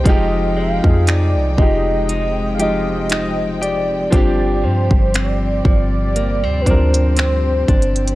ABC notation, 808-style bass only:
X:1
M:4/4
L:1/16
Q:"Swing 16ths" 1/4=59
K:Fdor
V:1 name="808-style bass" clef=bass
F,,,3 F,,2 C,, F,,,8- F,,,2 | G,,,2 G,, G,,,3 G,,,3 D,, D,,4 G,,,2 |]